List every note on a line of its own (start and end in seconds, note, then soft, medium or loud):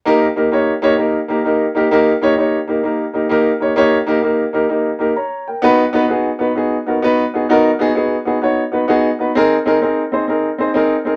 0.05 0.24 A#3 loud
0.05 0.25 D#4 loud
0.05 0.25 G4 medium
0.05 0.25 A#4 loud
0.36 0.46 A#3 medium
0.36 0.46 D#4 medium
0.36 0.47 G4 medium
0.36 0.47 A#4 medium
0.51 0.71 A#3 medium
0.51 0.71 D#4 medium
0.51 0.71 G4 medium
0.51 0.72 C#5 medium
0.82 0.92 A#3 loud
0.82 0.92 D#4 medium
0.82 0.93 G4 medium
0.82 0.93 C#5 loud
0.97 1.17 A#3 medium
0.97 1.17 D#4 medium
0.97 1.17 G4 medium
0.97 1.18 A#4 medium
1.28 1.39 A#3 medium
1.28 1.39 D#4 medium
1.28 1.39 G4 medium
1.28 1.40 A#4 medium
1.44 1.64 A#3 medium
1.44 1.64 D#4 medium
1.44 1.65 G4 medium
1.44 1.65 A#4 medium
1.75 1.85 A#3 medium
1.75 1.85 D#4 medium
1.75 1.86 G4 medium
1.75 1.86 A#4 medium
1.91 2.10 A#3 loud
1.91 2.11 D#4 medium
1.91 2.11 G4 medium
1.91 2.11 A#4 loud
2.21 2.32 A#3 medium
2.21 2.32 D#4 medium
2.21 2.32 G4 medium
2.21 2.33 C#5 loud
2.37 2.56 A#3 medium
2.37 2.57 D#4 medium
2.37 2.57 G4 medium
2.37 2.57 C#5 medium
2.67 2.78 A#3 medium
2.67 2.78 D#4 medium
2.67 2.78 G4 medium
2.67 2.79 A#4 medium
2.83 3.03 A#3 medium
2.83 3.03 D#4 medium
2.83 3.03 G4 medium
2.83 3.04 A#4 medium
3.13 3.24 A#3 medium
3.13 3.25 D#4 medium
3.13 3.25 G4 medium
3.13 3.25 A#4 medium
3.29 3.49 A#3 medium
3.29 3.49 D#4 medium
3.29 3.50 G4 medium
3.29 3.50 A#4 loud
3.60 3.71 A#3 medium
3.60 3.71 D#4 medium
3.60 3.71 G4 medium
3.60 3.72 C#5 medium
3.76 3.96 A#3 loud
3.76 3.96 D#4 medium
3.76 3.96 G4 loud
3.76 3.96 C#5 loud
4.06 4.17 A#3 loud
4.06 4.17 D#4 medium
4.06 4.18 G4 medium
4.06 4.18 A#4 loud
4.22 4.42 A#3 medium
4.22 4.42 D#4 medium
4.22 4.43 G4 medium
4.22 4.43 A#4 medium
4.53 4.64 A#3 medium
4.53 4.64 D#4 medium
4.53 4.64 G4 medium
4.53 4.64 A#4 medium
4.69 4.89 A#3 medium
4.69 4.89 D#4 medium
4.69 4.89 G4 medium
4.69 4.89 A#4 medium
4.99 5.10 A#3 medium
4.99 5.10 D#4 medium
4.99 5.10 G4 medium
4.99 5.11 A#4 medium
5.16 5.46 C#5 medium
5.16 5.46 A#5 medium
5.48 5.92 A#4 soft
5.48 5.92 G5 medium
5.62 5.82 B3 loud
5.62 5.82 D#4 loud
5.62 5.82 F#4 medium
5.62 5.83 B4 loud
5.93 6.03 B3 loud
5.93 6.04 D#4 medium
5.93 6.04 F#4 medium
5.93 6.04 B4 loud
6.08 6.28 B3 medium
6.08 6.29 D#4 medium
6.08 6.29 F#4 medium
6.08 6.29 G#4 medium
6.39 6.50 B3 medium
6.39 6.50 D#4 medium
6.39 6.50 F#4 medium
6.39 6.51 B4 medium
6.55 6.75 B3 medium
6.55 6.75 D#4 medium
6.55 6.75 F#4 medium
6.55 6.76 G#4 medium
6.87 6.97 B3 medium
6.87 6.97 D#4 medium
6.87 6.97 F#4 medium
6.87 6.97 A#4 medium
7.02 7.22 B3 loud
7.02 7.22 D#4 medium
7.02 7.22 F#4 medium
7.02 7.23 B4 loud
7.34 7.44 B3 medium
7.34 7.44 D#4 medium
7.34 7.44 F#4 medium
7.34 7.44 G#4 medium
7.49 7.68 B3 loud
7.49 7.69 D#4 loud
7.49 7.69 F#4 loud
7.49 7.69 A#4 loud
7.79 7.89 B3 medium
7.79 7.90 D#4 medium
7.79 7.90 F#4 medium
7.79 7.91 G#4 loud
7.95 8.14 B3 medium
7.95 8.15 D#4 medium
7.95 8.15 F#4 medium
7.95 8.15 G#4 medium
8.25 8.36 B3 medium
8.25 8.36 D#4 medium
8.25 8.37 F#4 medium
8.25 8.37 G#4 medium
8.42 8.61 B3 medium
8.42 8.61 D#4 medium
8.42 8.62 F#4 medium
8.42 8.62 C#5 medium
8.72 8.82 B3 medium
8.72 8.83 D#4 medium
8.72 8.83 F#4 medium
8.72 8.83 B4 medium
8.88 9.07 B3 loud
8.88 9.08 D#4 medium
8.88 9.08 F#4 medium
8.88 9.08 G#4 loud
9.19 9.29 B3 medium
9.19 9.29 D#4 medium
9.19 9.30 F#4 medium
9.19 9.30 B4 medium
9.35 9.54 C4 loud
9.35 9.55 D#4 medium
9.35 9.55 G#4 loud
9.35 9.55 A#4 loud
9.66 9.76 C4 medium
9.66 9.76 D#4 medium
9.66 9.76 G#4 medium
9.66 9.77 A#4 loud
9.82 10.01 C4 medium
9.82 10.01 D#4 medium
9.82 10.02 G#4 medium
9.82 10.02 A#4 medium
10.12 10.22 C4 medium
10.12 10.23 D#4 medium
10.12 10.23 G#4 medium
10.12 10.23 C5 medium
10.28 10.47 C4 medium
10.28 10.48 D#4 medium
10.28 10.48 G#4 medium
10.28 10.48 A#4 medium
10.58 10.69 C4 medium
10.58 10.69 D#4 medium
10.58 10.70 G#4 medium
10.58 10.70 C5 medium
10.74 10.94 C4 medium
10.74 10.94 D#4 medium
10.74 10.94 G#4 medium
10.74 10.95 A#4 loud
11.05 11.15 C4 medium
11.05 11.16 D#4 medium
11.05 11.16 G#4 medium
11.05 11.16 A#4 medium